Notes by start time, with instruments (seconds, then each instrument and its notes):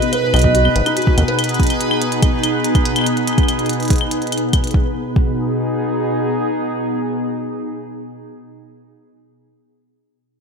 Already playing: ambient pad B2 B3 D#4 G#4, synth texture B4, soft synth lead D#5
0.02 felt piano B3, closed hi-hat
0.13 soft synth lead B4, felt piano B4, closed hi-hat, claves
0.23 felt piano B4
0.34 acid bass B1, felt piano B3, soft synth lead D#5, closed hi-hat, claves
0.36 closed hi-hat
0.39 closed hi-hat
0.42 felt piano B3, kick, closed hi-hat
0.55 felt piano F#4, closed hi-hat
0.65 felt piano B3, claves
0.76 acid bass G#1, felt piano B4, closed hi-hat
0.86 felt piano D#4, closed hi-hat, claves
0.97 felt piano F#4, closed hi-hat
1.02 closed hi-hat
1.07 felt piano F#4, kick
1.18 acid bass D#2, felt piano B3, closed hi-hat, claves
1.28 felt piano B4, closed hi-hat
1.39 closed hi-hat, claves
1.44 closed hi-hat
1.49 closed hi-hat
1.54 closed hi-hat
1.60 kick, closed hi-hat
1.63 closed hi-hat
1.67 closed hi-hat
1.70 closed hi-hat, claves
1.81 closed hi-hat
1.91 claves
2.02 closed hi-hat
2.12 closed hi-hat
2.23 kick, closed hi-hat, claves
2.44 closed hi-hat, claves
2.65 closed hi-hat
2.75 kick, closed hi-hat, claves
2.85 closed hi-hat
2.96 closed hi-hat, claves
2.99 claves
3.01 claves
3.04 closed hi-hat, claves
3.17 closed hi-hat
3.28 closed hi-hat, claves
3.33 claves
3.38 kick, closed hi-hat, claves
3.43 claves
3.49 closed hi-hat, claves
3.59 closed hi-hat
3.66 closed hi-hat
3.69 closed hi-hat
3.73 closed hi-hat
3.80 closed hi-hat
3.83 closed hi-hat
3.85 closed hi-hat
3.88 kick, closed hi-hat
3.90 closed hi-hat
3.93 closed hi-hat
3.98 closed hi-hat, claves
4.11 closed hi-hat
4.22 closed hi-hat
4.27 closed hi-hat
4.32 closed hi-hat, claves
4.38 closed hi-hat
4.53 kick, closed hi-hat, claves
4.64 closed hi-hat
4.67 closed hi-hat
4.71 ambient pad B2, kick, closed hi-hat
4.81 ambient pad B3
4.87 ambient pad D#4
4.93 ambient pad G#4
5.16 kick